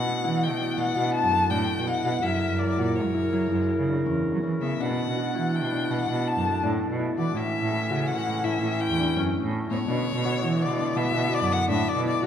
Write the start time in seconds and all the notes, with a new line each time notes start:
Already playing: B2 A3 B3 D4 E4 F#5
0.06 F#4
0.24 E3 E4
0.43 G5
0.51 B2
0.60 D4
0.78 B2 F#4 F#5
0.96 B2 F#4
1.14 A5
1.23 F#2
1.32 A4
1.50 A2 D4 G5
1.77 B2
1.87 E4 F#5
2.04 B2 F#4
2.22 F#2 C#3 F#3 E4 A#4 E5
2.50 F#2
2.59 A#4 D5
2.77 A#2 F#4
2.96 C#5
3.05 F#2
3.14 E4
3.32 F#3 E4
3.51 F#2 E4
3.79 C#3
3.88 D4
4.06 E2 C#4
4.34 F#3
4.43 E3 C#4
4.62 C#3 B3 E5
4.80 B2 A3 B3 D4 F#5
5.08 B2
5.16 F#4
5.35 E3 E4
5.55 G5
5.63 B2
5.72 D4
5.91 B2 F#4 F#5
6.09 B2 F#4
6.27 A5
6.37 F#2
6.45 A4
6.63 A2 D4
6.90 B2
6.99 E4
7.17 E3 F#4 D5
7.35 A2 E3 C#4 E4 E5
7.62 A2
7.72 A4
7.90 C#3 F#4
8.07 F#5
8.17 A2
8.26 E4
8.44 A2 E4 E5
8.62 A2 E4
8.80 G5
8.89 E2
8.98 D4
9.16 F#2 C#4
9.43 A2
9.52 C#4
9.69 A2 B3 C#5
9.88 B2 D3 B3 D4
10.15 B2
10.25 F#4
10.42 E3 E4
10.61 D5
10.69 B2
10.78 D4
10.96 B2 F#4 E5
11.14 B2 F#4
11.34 D5
11.42 F#2
11.50 A4 F#5
11.68 A2 D4 E5
11.88 D5
11.96 B2
12.05 E4 D5
12.23 B2 F#4